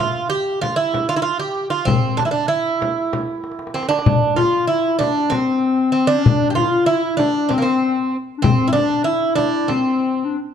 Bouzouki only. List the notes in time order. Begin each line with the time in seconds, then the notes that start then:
0.00 F4
0.30 G4
0.61 F4
0.76 E4
1.09 F4
1.16 E4
1.22 F4
1.39 G4
1.70 F4
1.85 C4
2.17 D4
2.25 E4
2.31 D4
2.48 E4
3.74 C4
3.89 D4
4.36 F4
4.67 E4
4.99 D4
5.30 C4
5.92 C4
6.07 D4
6.50 G4
6.55 F4
6.86 E4
7.17 D4
7.49 C4
7.58 A#3
7.62 C4
8.42 C4
8.68 E4
8.73 D4
9.04 E4
9.35 D4
9.68 C4